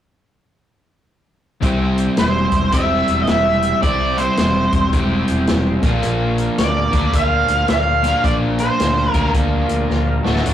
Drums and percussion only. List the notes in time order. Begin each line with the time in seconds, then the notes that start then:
1.62 kick, closed hi-hat
1.98 closed hi-hat
2.17 snare, closed hi-hat
2.52 kick, closed hi-hat
2.72 kick, closed hi-hat
3.08 closed hi-hat
3.27 snare, closed hi-hat
3.62 closed hi-hat
3.83 kick, closed hi-hat
4.18 closed hi-hat
4.37 snare, closed hi-hat
4.72 kick, closed hi-hat
4.93 kick, closed hi-hat
5.28 closed hi-hat
5.47 snare, closed hi-hat
5.83 kick, snare, closed hi-hat
6.03 closed hi-hat
6.38 closed hi-hat
6.58 snare, closed hi-hat
6.93 kick, closed hi-hat
7.13 kick, closed hi-hat
7.48 closed hi-hat
7.68 snare, closed hi-hat
8.04 closed hi-hat
8.24 kick, closed hi-hat
8.58 closed hi-hat
8.80 snare, closed hi-hat
8.98 snare
9.14 kick, closed hi-hat
9.34 kick, closed hi-hat
9.69 closed hi-hat
9.90 snare
10.26 snare
10.36 snare
10.46 closed hi-hat